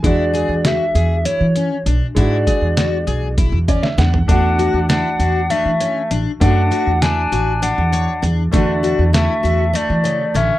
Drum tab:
HH |x-x-x-x-x-x-x-|x-x-x-x-x-x-x-|x-x-x-x-x-x-x-|x-x-x-x-x-x-x-|
SD |----o---------|----o------oo-|----o---------|----o---------|
FT |--------------|-------------o|--------------|--------------|
BD |o-------------|o-o-----o-o---|o-------------|o-------------|

HH |x-x-x-x-x-x-x-|
SD |----o-------o-|
FT |--------------|
BD |o-------------|